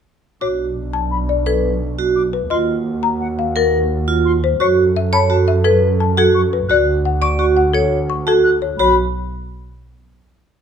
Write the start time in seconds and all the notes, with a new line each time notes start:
0.41 B1 D4 F#4 C#5 D6
0.93 A5
1.11 B5
1.29 D5
1.46 A4 B4
1.99 F#4
2.16 D6
2.33 B4
2.50 D#2 F4 F#4 D#5 C6
3.03 A#5
3.20 F#5
3.39 F5
3.56 A#4
4.08 F4
4.25 C6
4.44 C5
4.60 F#2 F#4 A4 C#5 C#6
4.96 E5
5.13 C#5 A5 B5
5.30 F#4 A5
5.48 E5
5.64 A4 B4
6.00 A5
6.17 F#4 A4 F#5
6.34 C#6
6.53 B4
6.69 D2 F#4 D5 F#6
7.05 F#5
7.21 D5 C#6 D6
7.38 F#4 C#6
7.57 F#5
7.73 A4 C#5
8.10 C#6
8.26 F#4 A4 A5
8.43 F#6
8.62 C#5
8.78 B1 F#4 C#5 B5